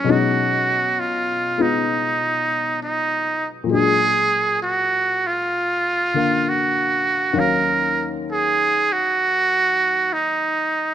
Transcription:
X:1
M:4/4
L:1/8
Q:"Swing" 1/4=66
K:Ebm
V:1 name="Muted trumpet"
^F2 =F ^D3 D z | A2 G F3 G2 | B z A G3 E2 |]
V:2 name="Grand piano"
[=B,,^F,^G,^C^D]3 [G,=B,D=F]4- [G,B,DF] | [B,,G,A,=DA]4- [B,,G,A,DA] [=D,B,f]3 | [E,,E,G,Df]8 |]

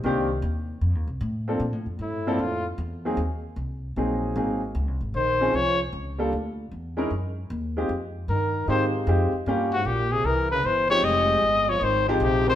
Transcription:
X:1
M:4/4
L:1/8
Q:"Swing" 1/4=153
K:Fm
V:1 name="Trumpet"
z8 | z2 =E2 F z3 | z8 | z2 c2 d z3 |
z8 | z2 B2 c z3 | z _G =G A B =B c d | e3 d c E G c |]
V:2 name="Upright piano"
[E,B,C=DG] z6 [F,B,CD=A] | z3 [F,B,C=D=A] z3 [_G,B,CE_A] | z4 [_G,B,CEA]2 [G,B,CEA] z | z3 [F,CDEA] z3 [G,B,=DF=A] |
z3 [A,DE=EB] z3 [A,C_EFG] | z4 [A,CEFG]2 [A,CEFG] z | [G,B,DFG] z6 [F,A,CEG]- | [F,A,CEG]2 z3 [F,A,CEG]2 [F,A,CEB] |]
V:3 name="Trombone" clef=bass
z8 | z2 =A,,2 A,, z3 | z8 | z2 E,2 F, z3 |
z8 | z2 E,2 E, z3 | z A,, B,, C, =E, D, E, F, | A,3 F, E, G,, C, E, |]
V:4 name="Upright bass" clef=bass
C,,2 E,,2 (3F,, E,, C,, =A,,2 | (3B,, =A,, F,, G,,2 F,,2 =E,,2 | E,,2 C,,2 B,,,2 A,,,2 | (3D,, C,, A,,, B,,,2 C,,2 D,,2 |
=D,,2 =E,,2 _G,,2 _E,,2 | F,,2 G,,2 A,,2 F,, z | G,,2 B,,,2 C,,2 G,,,2 | F,,,2 G,,,2 A,,,2 B,,,2 |]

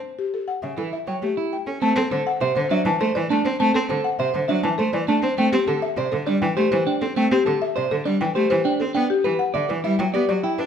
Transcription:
X:1
M:3/4
L:1/16
Q:1/4=101
K:Am
V:1 name="Marimba"
z G A ^f e A e g G z g A | [K:Dmix] a A c f e c e a A d a c | a A c f e c e a A d a c | g G A e d A d g G c g A |
g G A e d A d g G c g A | g G B f e B e g G d g B |]
V:2 name="Clean electric guitar"
z4 z E z ^c z E z2 | [K:Dmix] C z A z c z D z c z D z | C z A z c z D z c z D z | C z A z c z D z c z D z |
C z A z c z D z c z D z | D z B z d z E z d z E z |]
V:3 name="Cello" clef=bass
z4 ^C, E, z ^F, A, z2 ^C | [K:Dmix] A, C D, z C, D, F, E, A, E, A, C | A, C D, z C, D, F, E, A, E, A, C | A, C D, z C, D, G, E, A, E, z C |
A, C D, z C, D, G, E, A, E, z C | B, z E, z D, E, G, F, B, F, z D |]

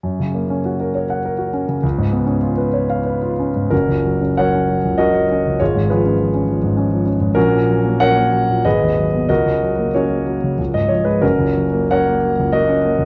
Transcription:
X:1
M:3/4
L:1/16
Q:1/4=96
K:F#
V:1 name="Grand piano"
z12 | z12 | [CFA]4 [Acf]4 [FAd]4 | [EGc]2 [EGB]8 z2 |
[CFA]4 [Acf]4 [GBd]4 | [FAd]4 [FAc]4- [FAc] d c B | [CFA]4 [Acf]4 [FAd]4 |]
V:2 name="Grand piano" clef=bass
F,, C, A, C F A c f A F C C, | C,, G,, B, C E B c e B E C G,, | F,,, C,, F, C F, C F, C,, C F, C C,, | G,,, G,, E, C E, C E, G,, C E, C G,, |
A,,, A,, F, A, C A, F, A,, G,,, D,, F, B, | C,, C, F, A, C A, F, C, C,, G,, E, G, | F,,, C,, F, A, C A, F, C,, A, C A, C,, |]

